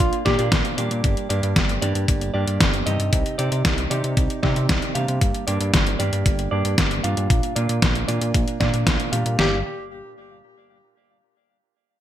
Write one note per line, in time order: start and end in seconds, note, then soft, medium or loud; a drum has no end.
0.00 0.11 A#1 medium
0.00 0.23 A#2 medium
0.00 0.23 A#3 medium
0.00 0.23 D4 medium
0.00 0.16 F4 medium
0.00 0.23 F4 medium
0.00 0.23 D5 loud
0.00 kick loud
0.00 closed hi-hat medium
0.13 closed hi-hat soft
0.25 0.37 A#2 medium
0.25 0.36 A#2 medium
0.25 0.36 A#3 medium
0.25 0.36 D4 medium
0.25 0.36 F4 medium
0.25 0.46 G4 medium
0.25 0.36 D5 medium
0.25 kick medium
0.25 snare medium
0.25 closed hi-hat soft
0.38 0.50 A#2 medium
0.38 0.75 A#2 medium
0.38 0.75 A#3 medium
0.38 0.75 D4 medium
0.38 0.75 F4 medium
0.38 0.75 D5 loud
0.38 closed hi-hat soft
0.52 0.63 A#1 medium
0.52 kick loud
0.52 snare loud
0.52 closed hi-hat medium
0.65 closed hi-hat soft
0.77 1.27 G2 medium
0.77 0.89 A#2 medium
0.77 1.27 A#3 medium
0.77 1.27 D4 medium
0.77 1.27 G4 medium
0.77 1.27 D5 medium
0.77 closed hi-hat medium
0.91 1.02 A#2 medium
0.91 closed hi-hat soft
1.04 1.15 G1 loud
1.04 kick loud
1.04 closed hi-hat medium
1.17 closed hi-hat soft
1.29 1.41 G2 loud
1.29 1.79 G2 medium
1.29 1.79 A#3 medium
1.29 1.79 D4 medium
1.29 1.79 G4 medium
1.29 1.79 D5 medium
1.29 closed hi-hat medium
1.43 1.54 G2 medium
1.43 closed hi-hat soft
1.56 1.78 G1 medium
1.56 kick loud
1.56 snare loud
1.56 closed hi-hat medium
1.69 closed hi-hat soft
1.82 1.93 G2 medium
1.82 2.31 G2 medium
1.82 2.31 A#3 medium
1.82 2.31 D4 medium
1.82 2.31 G4 medium
1.82 2.31 D5 loud
1.82 closed hi-hat medium
1.95 2.06 G2 medium
1.95 closed hi-hat soft
2.08 2.31 G1 medium
2.08 kick loud
2.08 closed hi-hat medium
2.21 closed hi-hat soft
2.34 2.46 G2 loud
2.34 2.83 G2 medium
2.34 2.83 A#3 medium
2.34 2.83 D4 medium
2.34 2.83 G4 medium
2.34 2.83 D5 loud
2.48 2.59 G2 medium
2.48 closed hi-hat soft
2.60 2.83 G1 medium
2.60 kick loud
2.60 snare loud
2.60 closed hi-hat medium
2.74 closed hi-hat soft
2.86 2.98 G2 medium
2.86 3.36 C3 medium
2.86 3.36 C4 medium
2.86 3.36 D#4 medium
2.86 3.36 G4 medium
2.86 3.36 D#5 loud
2.86 closed hi-hat medium
3.00 3.11 G2 medium
3.00 closed hi-hat soft
3.13 3.24 C2 loud
3.13 kick loud
3.13 closed hi-hat medium
3.26 closed hi-hat soft
3.38 3.50 C3 loud
3.38 3.88 C3 medium
3.38 3.88 C4 medium
3.38 3.88 D#4 medium
3.38 3.88 G4 medium
3.38 3.88 D5 medium
3.38 closed hi-hat medium
3.52 3.63 C3 medium
3.52 closed hi-hat soft
3.65 3.87 C2 medium
3.65 kick loud
3.65 snare loud
3.65 closed hi-hat medium
3.78 closed hi-hat soft
3.90 4.02 C3 medium
3.90 4.40 C3 medium
3.90 4.40 C4 medium
3.90 4.40 D#4 medium
3.90 4.40 G4 medium
3.90 4.40 D5 medium
3.90 closed hi-hat medium
4.04 4.15 C3 medium
4.04 closed hi-hat soft
4.17 4.28 C2 medium
4.17 kick loud
4.17 closed hi-hat medium
4.30 closed hi-hat soft
4.43 4.54 C3 medium
4.43 4.92 C3 medium
4.43 4.92 C4 medium
4.43 4.92 D#4 medium
4.43 4.92 G4 medium
4.43 4.92 D5 loud
4.43 kick medium
4.43 snare medium
4.56 4.67 C3 medium
4.56 closed hi-hat soft
4.69 4.80 C2 medium
4.69 kick loud
4.69 snare loud
4.69 closed hi-hat medium
4.82 closed hi-hat soft
4.95 5.44 G2 medium
4.95 5.07 C3 medium
4.95 5.44 A#3 medium
4.95 5.44 D4 medium
4.95 5.44 G4 medium
4.95 5.44 F5 loud
4.95 closed hi-hat medium
5.08 5.20 C3 medium
5.08 closed hi-hat soft
5.21 5.33 G1 loud
5.21 kick loud
5.21 closed hi-hat medium
5.34 closed hi-hat soft
5.47 5.59 G2 loud
5.47 5.97 G2 medium
5.47 5.97 A#3 medium
5.47 5.97 D4 medium
5.47 5.97 G4 medium
5.47 5.97 D5 medium
5.47 closed hi-hat medium
5.61 5.72 G2 medium
5.61 closed hi-hat soft
5.74 5.96 G1 medium
5.74 kick loud
5.74 snare loud
5.74 closed hi-hat medium
5.87 closed hi-hat soft
5.99 6.11 G2 medium
5.99 6.49 G2 medium
5.99 6.49 A#3 medium
5.99 6.49 D4 medium
5.99 6.49 G4 medium
5.99 6.49 D5 medium
5.99 closed hi-hat medium
6.13 6.24 G2 medium
6.13 closed hi-hat soft
6.26 6.48 G1 medium
6.26 kick loud
6.26 closed hi-hat medium
6.39 closed hi-hat soft
6.51 6.63 G2 loud
6.51 7.01 G2 medium
6.51 7.01 A#3 medium
6.51 7.01 D4 medium
6.51 7.01 G4 medium
6.51 7.01 D5 loud
6.65 6.76 G2 medium
6.65 closed hi-hat soft
6.78 7.00 G1 medium
6.78 kick loud
6.78 snare loud
6.78 closed hi-hat medium
6.91 closed hi-hat soft
7.04 7.15 G2 medium
7.04 7.53 A#2 medium
7.04 7.53 A#3 medium
7.04 7.53 D4 medium
7.04 7.53 F4 medium
7.04 7.53 F5 medium
7.04 closed hi-hat medium
7.17 7.28 G2 medium
7.17 closed hi-hat soft
7.30 7.41 A#1 loud
7.30 kick loud
7.30 closed hi-hat medium
7.43 closed hi-hat soft
7.56 7.67 A#2 loud
7.56 8.05 A#2 medium
7.56 8.05 A#3 medium
7.56 8.05 D4 medium
7.56 8.05 F4 medium
7.56 8.05 D5 medium
7.56 closed hi-hat medium
7.69 7.80 A#2 medium
7.69 closed hi-hat soft
7.82 8.05 A#1 medium
7.82 kick loud
7.82 snare loud
7.82 closed hi-hat medium
7.95 closed hi-hat soft
8.08 8.20 A#2 medium
8.08 8.57 A#2 medium
8.08 8.57 A#3 medium
8.08 8.57 D4 medium
8.08 8.57 F4 medium
8.08 8.57 D5 medium
8.08 closed hi-hat medium
8.21 8.33 A#2 medium
8.21 closed hi-hat soft
8.34 8.46 A#1 medium
8.34 kick loud
8.34 closed hi-hat loud
8.48 closed hi-hat soft
8.60 8.72 A#2 medium
8.60 9.10 A#2 medium
8.60 9.10 A#3 medium
8.60 9.10 D4 medium
8.60 9.10 F4 medium
8.60 9.10 D5 loud
8.60 kick medium
8.60 snare medium
8.60 closed hi-hat soft
8.74 8.85 A#2 medium
8.74 closed hi-hat soft
8.87 8.98 A#1 medium
8.87 kick loud
8.87 snare loud
8.87 closed hi-hat medium
9.00 closed hi-hat soft
9.12 9.62 G2 medium
9.12 9.24 A#2 medium
9.12 9.38 A#3 medium
9.12 9.38 D4 medium
9.12 9.38 G4 medium
9.12 9.62 F5 medium
9.12 closed hi-hat medium
9.26 9.37 A#2 medium
9.26 closed hi-hat soft
9.39 9.63 G1 loud
9.39 9.58 A#3 medium
9.39 9.58 D4 medium
9.39 9.58 G4 medium
9.39 9.58 D5 medium
9.39 snare loud